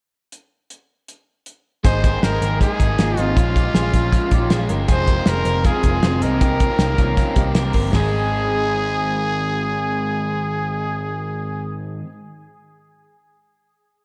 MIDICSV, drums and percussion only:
0, 0, Header, 1, 2, 480
1, 0, Start_track
1, 0, Key_signature, -4, "major"
1, 0, Tempo, 380952
1, 407, Time_signature, 4, 2, 24, 8
1, 17699, End_track
2, 0, Start_track
2, 0, Title_t, "Drums"
2, 407, Note_on_c, 9, 42, 56
2, 533, Note_off_c, 9, 42, 0
2, 886, Note_on_c, 9, 42, 55
2, 1012, Note_off_c, 9, 42, 0
2, 1366, Note_on_c, 9, 42, 53
2, 1492, Note_off_c, 9, 42, 0
2, 1841, Note_on_c, 9, 42, 51
2, 1967, Note_off_c, 9, 42, 0
2, 2325, Note_on_c, 9, 36, 102
2, 2325, Note_on_c, 9, 42, 86
2, 2451, Note_off_c, 9, 36, 0
2, 2451, Note_off_c, 9, 42, 0
2, 2569, Note_on_c, 9, 42, 75
2, 2570, Note_on_c, 9, 36, 94
2, 2695, Note_off_c, 9, 42, 0
2, 2696, Note_off_c, 9, 36, 0
2, 2809, Note_on_c, 9, 38, 104
2, 2818, Note_on_c, 9, 42, 88
2, 2935, Note_off_c, 9, 38, 0
2, 2944, Note_off_c, 9, 42, 0
2, 3049, Note_on_c, 9, 42, 68
2, 3175, Note_off_c, 9, 42, 0
2, 3286, Note_on_c, 9, 36, 75
2, 3293, Note_on_c, 9, 42, 70
2, 3412, Note_off_c, 9, 36, 0
2, 3419, Note_off_c, 9, 42, 0
2, 3525, Note_on_c, 9, 36, 85
2, 3528, Note_on_c, 9, 42, 63
2, 3651, Note_off_c, 9, 36, 0
2, 3654, Note_off_c, 9, 42, 0
2, 3761, Note_on_c, 9, 42, 78
2, 3765, Note_on_c, 9, 38, 90
2, 3887, Note_off_c, 9, 42, 0
2, 3891, Note_off_c, 9, 38, 0
2, 3998, Note_on_c, 9, 42, 57
2, 4124, Note_off_c, 9, 42, 0
2, 4242, Note_on_c, 9, 36, 106
2, 4248, Note_on_c, 9, 42, 79
2, 4368, Note_off_c, 9, 36, 0
2, 4374, Note_off_c, 9, 42, 0
2, 4484, Note_on_c, 9, 36, 96
2, 4491, Note_on_c, 9, 42, 72
2, 4610, Note_off_c, 9, 36, 0
2, 4617, Note_off_c, 9, 42, 0
2, 4720, Note_on_c, 9, 38, 100
2, 4730, Note_on_c, 9, 42, 88
2, 4846, Note_off_c, 9, 38, 0
2, 4856, Note_off_c, 9, 42, 0
2, 4958, Note_on_c, 9, 42, 68
2, 4959, Note_on_c, 9, 36, 73
2, 5084, Note_off_c, 9, 42, 0
2, 5085, Note_off_c, 9, 36, 0
2, 5197, Note_on_c, 9, 36, 82
2, 5203, Note_on_c, 9, 42, 71
2, 5323, Note_off_c, 9, 36, 0
2, 5329, Note_off_c, 9, 42, 0
2, 5433, Note_on_c, 9, 42, 60
2, 5438, Note_on_c, 9, 36, 86
2, 5559, Note_off_c, 9, 42, 0
2, 5564, Note_off_c, 9, 36, 0
2, 5672, Note_on_c, 9, 42, 73
2, 5676, Note_on_c, 9, 38, 102
2, 5798, Note_off_c, 9, 42, 0
2, 5802, Note_off_c, 9, 38, 0
2, 5911, Note_on_c, 9, 42, 61
2, 6037, Note_off_c, 9, 42, 0
2, 6153, Note_on_c, 9, 42, 91
2, 6155, Note_on_c, 9, 36, 97
2, 6279, Note_off_c, 9, 42, 0
2, 6281, Note_off_c, 9, 36, 0
2, 6393, Note_on_c, 9, 42, 73
2, 6397, Note_on_c, 9, 36, 90
2, 6519, Note_off_c, 9, 42, 0
2, 6523, Note_off_c, 9, 36, 0
2, 6625, Note_on_c, 9, 38, 98
2, 6634, Note_on_c, 9, 42, 88
2, 6751, Note_off_c, 9, 38, 0
2, 6760, Note_off_c, 9, 42, 0
2, 6869, Note_on_c, 9, 42, 69
2, 6995, Note_off_c, 9, 42, 0
2, 7111, Note_on_c, 9, 42, 71
2, 7115, Note_on_c, 9, 36, 84
2, 7237, Note_off_c, 9, 42, 0
2, 7241, Note_off_c, 9, 36, 0
2, 7351, Note_on_c, 9, 42, 64
2, 7356, Note_on_c, 9, 36, 87
2, 7477, Note_off_c, 9, 42, 0
2, 7482, Note_off_c, 9, 36, 0
2, 7592, Note_on_c, 9, 42, 73
2, 7596, Note_on_c, 9, 38, 97
2, 7718, Note_off_c, 9, 42, 0
2, 7722, Note_off_c, 9, 38, 0
2, 7835, Note_on_c, 9, 42, 67
2, 7961, Note_off_c, 9, 42, 0
2, 8077, Note_on_c, 9, 42, 84
2, 8078, Note_on_c, 9, 36, 102
2, 8203, Note_off_c, 9, 42, 0
2, 8204, Note_off_c, 9, 36, 0
2, 8317, Note_on_c, 9, 42, 76
2, 8321, Note_on_c, 9, 36, 86
2, 8443, Note_off_c, 9, 42, 0
2, 8447, Note_off_c, 9, 36, 0
2, 8552, Note_on_c, 9, 38, 94
2, 8562, Note_on_c, 9, 42, 86
2, 8678, Note_off_c, 9, 38, 0
2, 8688, Note_off_c, 9, 42, 0
2, 8798, Note_on_c, 9, 42, 70
2, 8800, Note_on_c, 9, 36, 77
2, 8924, Note_off_c, 9, 42, 0
2, 8926, Note_off_c, 9, 36, 0
2, 9038, Note_on_c, 9, 36, 84
2, 9038, Note_on_c, 9, 42, 72
2, 9164, Note_off_c, 9, 36, 0
2, 9164, Note_off_c, 9, 42, 0
2, 9271, Note_on_c, 9, 42, 71
2, 9277, Note_on_c, 9, 36, 87
2, 9397, Note_off_c, 9, 42, 0
2, 9403, Note_off_c, 9, 36, 0
2, 9509, Note_on_c, 9, 42, 79
2, 9513, Note_on_c, 9, 38, 101
2, 9635, Note_off_c, 9, 42, 0
2, 9639, Note_off_c, 9, 38, 0
2, 9742, Note_on_c, 9, 46, 68
2, 9756, Note_on_c, 9, 36, 69
2, 9868, Note_off_c, 9, 46, 0
2, 9882, Note_off_c, 9, 36, 0
2, 9992, Note_on_c, 9, 38, 93
2, 9994, Note_on_c, 9, 43, 85
2, 10118, Note_off_c, 9, 38, 0
2, 10120, Note_off_c, 9, 43, 0
2, 17699, End_track
0, 0, End_of_file